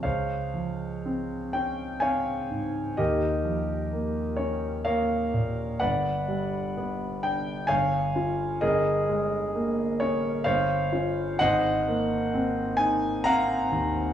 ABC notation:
X:1
M:3/4
L:1/8
Q:1/4=64
K:Dblyd
V:1 name="Grand piano"
[cdf]3 g [dfa]2 | [GBe]3 d [Bdf]2 | [=B=d^f]3 g [_d=fa]2 | [ABe]3 d [cdf]2 |
[ce_g]3 a [fgb]2 |]
V:2 name="Grand piano"
D,, F, C D C A,, | E,, F, B, D B, B,, | G,,, G, =B, =D G,,, [_DF] | G,,, A, B, D G,,, [DF] |
A,,, B, C E C E,, |]